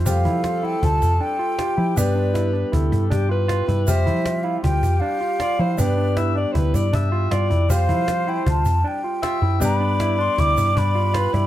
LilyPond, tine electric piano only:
\new Staff \with { instrumentName = "Tine electric piano" } { \time 5/4 \key f \major \tempo 4 = 157 r8 e'8 f'8 e'8 f'4 d'8 f'8 f'8 e'8 | r8 d'8 e'8 d'8 e'4 d'8 f'8 f'8 e'8 | r8 e'8 f'8 e'8 f'4 d'8 f'8 f'8 e'8 | r8 d'8 e'8 d'8 e'4 d'8 f'8 f'8 e'8 |
r8 e'8 f'8 e'8 f'4 d'8 f'8 f'8 e'8 | r8 d'8 e'8 d'8 e'4 d'8 f'8 f'8 e'8 | }